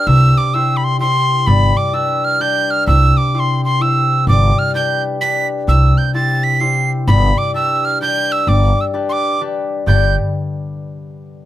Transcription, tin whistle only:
0.07 0.39 E6 loud
0.38 0.55 D6 loud
0.54 0.78 E6 loud
0.77 0.85 B5 medium
0.84 1.00 C6 medium
1.00 1.48 C6 loud
1.47 1.79 B5 loud
1.77 1.95 D6 medium
1.94 2.26 E6 loud
2.25 2.43 F6 loud
2.41 2.72 G6 loud
2.71 2.87 F6 loud
2.87 3.19 E6 loud
3.17 3.35 D6 loud
3.35 3.40 D6 medium
3.39 3.64 C6 medium
3.65 3.83 C6 medium
3.82 4.28 E6 loud
4.28 4.60 D6 loud
4.59 4.75 F6 medium
4.75 5.03 G6 medium
5.21 5.47 B6 loud
5.69 5.99 E6 loud
5.98 6.14 G6 medium
6.14 6.45 A6 loud
6.44 6.62 B6 loud
6.60 6.91 C7 loud
7.08 7.39 B5 loud
7.38 7.54 D6 loud
7.55 7.86 E6 loud
7.85 8.01 F6 loud
8.02 8.34 G6 loud
8.32 8.50 E6 loud
8.49 8.81 D6 loud
8.81 8.83 E6 medium
9.09 9.13 C6 medium
9.09 9.42 D6 loud
9.87 10.15 G6 medium

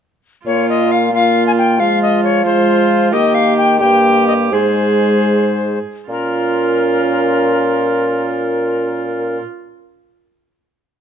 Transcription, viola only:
0.46 1.09 F4 medium
1.14 1.78 F4 medium
1.79 2.44 F4 soft
2.45 3.14 F4 medium
3.12 3.80 G4 medium
3.81 4.54 G4 medium
4.52 5.85 G#4 medium
6.09 9.41 F4 medium

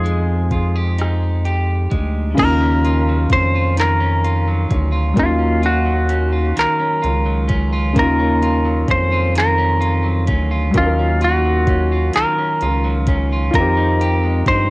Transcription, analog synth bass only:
0.00 1.88 F2 medium
1.93 2.35 D2 medium
2.39 3.27 D#2 loud
3.31 4.66 F2 medium
4.72 5.13 D2 loud
5.18 6.53 D#2 loud
6.58 6.67 C#2 soft
7.04 7.98 C#2 loud
7.97 8.85 D#2 medium
8.89 10.31 F2 loud
10.29 10.71 D2 medium
10.75 12.11 D#2 medium
12.16 12.25 C#2 soft
12.62 13.51 C#2 loud
13.55 14.43 F2 loud
14.47 14.70 G2 medium

